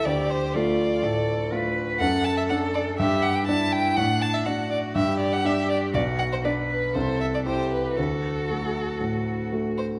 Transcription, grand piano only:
X:1
M:4/4
L:1/8
Q:1/4=122
K:Ddor
V:1 name="Grand piano"
D,,2 [A,FA]2 A,,2 [A,FA]2 | [K:Dmix] F,,2 [DA]2 G,,2 [Dd]2 | A,,2 [Dd]2 G,,2 [Dd]2 | B,,,2 [Dd]2 C,,2 [EA]2 |
D,,2 [A,FA]2 A,,2 [A,FA]2 |]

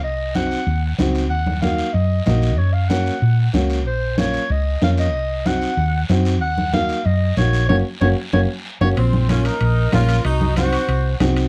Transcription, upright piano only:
X:1
M:4/4
L:1/8
Q:1/4=188
K:Bbm
V:1 name="Upright piano"
z2 [CEG] z3 [CEG] z | z2 [B,EG] z3 [B,EG] z | z2 [B,DG] z3 [B,DG] z | z2 [B,DF] z3 [B,DF] z |
z2 [CEG] z3 [CEG] z | z2 [B,EG] z3 [B,EG] z | [B,DG] z [B,DG] z [B,DG] z2 [B,DG] | z2 [B,DF] z3 [B,DF] z |
z2 [CEG] z3 [CEG] z |]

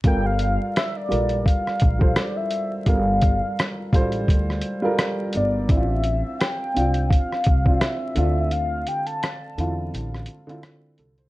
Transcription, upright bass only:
X:1
M:4/4
L:1/16
Q:"Swing 16ths" 1/4=85
K:Gdor
V:1 name="Upright bass" clef=bass
G,,,3 z3 B,,,2 z2 B,,,2 z4 | G,,,3 z3 A,,,2 D,,2 z4 G,,,2 | A,,,3 z3 C,,2 z2 C,,2 z2 D,,2- | D,,2 z4 E,,2 A,,,2 z4 C,,2 |]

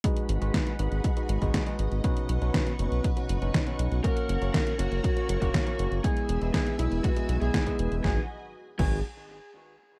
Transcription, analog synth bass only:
X:1
M:4/4
L:1/16
Q:1/4=120
K:G#m
V:1 name="Analog synth bass" clef=bass
z2 G,,, G,,, z2 G,,, G,,, z2 G,,, G,,, z2 G,,, G,,, | z2 B,,, B,,, z2 F,,, B,,, z2 F,,, F,,, z2 B,,, B,,, | z2 F,,, F,,, z2 F,,, F,,, z2 F,,, F,,, z2 F,,, F,,, | z2 E,,, E,,, z2 B,,, E,,, z2 B,,, B,,, z2 E,,, E,,, |
G,,, z4 z G,,,2 z8 |]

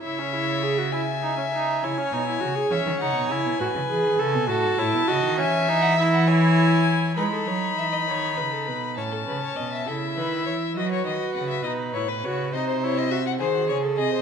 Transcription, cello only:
X:1
M:12/8
L:1/16
Q:3/8=67
K:C#m
V:1 name="Cello" clef=bass
C,12 C,2 B,,2 C,2 E, D, C, B,, C, B,, | A,, C, E, D, C, B,, A,, G,, A,, B,, C, D, E,12 | G,2 F,2 E,2 D,2 C,2 B,,2 A,,2 C,2 B,,2 C,2 D,2 E,2 | F,2 D,2 C,2 B,,2 A,,2 C,2 ^B,,6 D,2 C,2 B,,2 |]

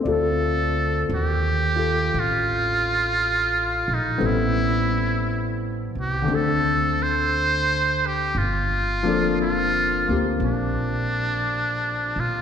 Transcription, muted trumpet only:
X:1
M:4/4
L:1/16
Q:"Swing" 1/4=58
K:Dphr
V:1 name="Muted trumpet"
A4 G4 F6 E2 | =E4- E z G2 A2 c4 G2 | F4 F3 z D6 F2 |]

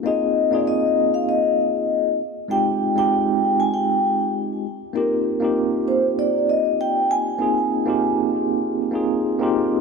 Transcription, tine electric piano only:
X:1
M:4/4
L:1/16
Q:"Swing 16ths" 1/4=98
K:Eb
V:1 name="Tine electric piano"
[B,CEFA]3 [B,CEFA] z12 | [A,CEFG]3 [A,CEFG] z12 | [B,CEFG]3 [B,CEFG] z12 | [B,CEFA]3 [B,CEFG] z6 [B,CEFA]3 [B,CEFG]3 |]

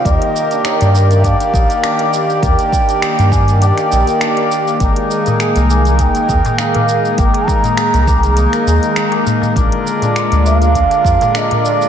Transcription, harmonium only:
X:1
M:4/4
L:1/16
Q:"Swing 16ths" 1/4=101
K:Ablyd
V:1 name="Harmonium"
[E,B,GB]6- [E,B,GB] [E,B,Gd]8- [E,B,Gd] | [E,B,Gd]6- [E,B,Gd] [E,B,Gd]8- [E,B,Gd] | [A,B,EB]6- [A,B,EB] [A,B,EB]8- [A,B,EB] | [A,B,EB]6- [A,B,EB] [A,B,EB]8- [A,B,EB] |
[A,DFB]6- [A,DFB] [A,DFB]8- [A,DFB] |]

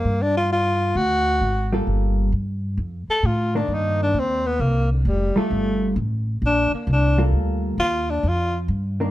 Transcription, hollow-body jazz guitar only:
X:1
M:4/4
L:1/8
Q:"Swing" 1/4=132
K:Gm
V:1 name="Hollow-body jazz guitar"
z6 z [G,B,FA]- | [G,B,FA]2 z4 z [E,B,D]- | [E,B,D]2 z4 z [G,FA]- | [G,FA]2 z4 z [G,B,FA]- |
[G,B,FA]2 z4 z [E,B,D] |]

